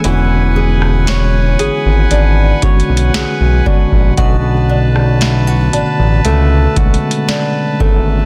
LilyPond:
<<
  \new Staff \with { instrumentName = "Pipe organ" } { \time 4/4 \key e \mixolydian \tempo 4 = 58 <b' fis'' gis''>1 | <b' a''>1 | }
  \new Staff \with { instrumentName = "Synth bell" } { \time 4/4 \key e \mixolydian e''8 r2. r8 | fis''4. a''2~ a''8 | }
  \new Staff \with { instrumentName = "Nylon-string guitar" } { \time 4/4 \key e \mixolydian e8 gis'8 cis''8 gis'8 d'8 cis''8 gis'8 d'8 | b,8 d'8 e'16 fis'16 d'8 a8 fis'8 d'8 a8 | }
  \new Staff \with { instrumentName = "Tine electric piano" } { \time 4/4 \key e \mixolydian <d gis b cis' fis'>4. r4 <d gis b cis' fis'>8. r16 <d gis b cis' fis'>8 | <d a b cis' fis'>4. r4 <d gis a b cis'>8. r16 <d a b cis' a'>8 | }
  \new Staff \with { instrumentName = "Analog synth bass" } { \clef bass \time 4/4 \key e \mixolydian e,,4. gis,,16 gis,,16 gis,,8 r16 b,,16 b,,16 b,,16 r16 ais,,16 | b,,4. a,,16 a,,16 cis,8 b,,16 r8. gis,,8 | }
  \new DrumStaff \with { instrumentName = "Drums" } \drummode { \time 4/4 hh8. ss16 <hh sn>8 hh8 \tuplet 3/2 { hh16 r16 r16 <hh bd>16 hh16 hh16 } <hh sn>8 bd16 bd16 | <hh bd>8. ss16 <hh sn>8 hh8 \tuplet 3/2 { hh16 r16 r16 <hh bd>16 hh16 hh16 } <hh sn>8 bd8 | }
>>